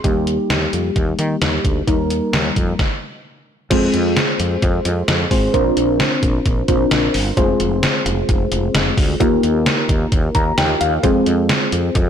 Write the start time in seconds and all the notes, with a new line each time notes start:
0.04 D#2 G3 A#3 D#4 G4, kick, closed hi-hat
0.27 closed hi-hat
0.50 D#2, snare, closed hi-hat
0.73 F2, closed hi-hat
0.96 D#2, kick, closed hi-hat
1.19 D#3, closed hi-hat
1.42 D#2, snare, closed hi-hat
1.65 D2, kick, closed hi-hat
1.87 D#2 G3 A#3 D#4 A#4, kick, closed hi-hat
2.10 closed hi-hat
2.33 D#2, snare, closed hi-hat
2.56 F2, kick, closed hi-hat
2.79 kick, snare
3.71 F2 G#3 C4 F4 G#4 C5, kick, closed hi-hat, crash
3.94 F2, closed hi-hat
4.17 snare, closed hi-hat
4.40 F2, closed hi-hat
4.62 F2, kick, closed hi-hat
4.85 F2, closed hi-hat
5.08 F2, snare, closed hi-hat
5.31 G#1 G#3 C4 F4 G#4 C5, kick, open hi-hat
5.54 A#1 C4 D4 F4 A#4 C5, kick, closed hi-hat
5.77 A#1, closed hi-hat
6.00 snare, closed hi-hat
6.23 A#1, kick, closed hi-hat
6.46 A#1, kick, closed hi-hat
6.68 A#1 C4 D4 F4 A#4 C5, kick, closed hi-hat
6.91 A#1, snare, closed hi-hat
7.14 G1, open hi-hat
7.37 F1 G#3 C4 F4 G#4 C5, kick, closed hi-hat
7.60 F1, closed hi-hat
7.83 snare, closed hi-hat
8.06 F1, closed hi-hat
8.29 F1, kick, closed hi-hat
8.52 F1, closed hi-hat
8.75 F1, snare, closed hi-hat
8.97 D2, kick, open hi-hat
9.20 D#2 A#3 D#4 F4 G4 A#4, kick, closed hi-hat
9.43 D#2, closed hi-hat
9.66 snare, closed hi-hat
9.89 D#2, kick, closed hi-hat
10.12 D#2, kick, closed hi-hat
10.35 D#2 A#5, kick, closed hi-hat
10.58 D#2 G5, snare, closed hi-hat
10.81 D#2 F5, closed hi-hat
11.03 F2 G#3 C4 F4 G#4 C5, kick, closed hi-hat
11.26 F2, closed hi-hat
11.49 snare, closed hi-hat
11.72 F2, closed hi-hat
11.95 F2, kick, closed hi-hat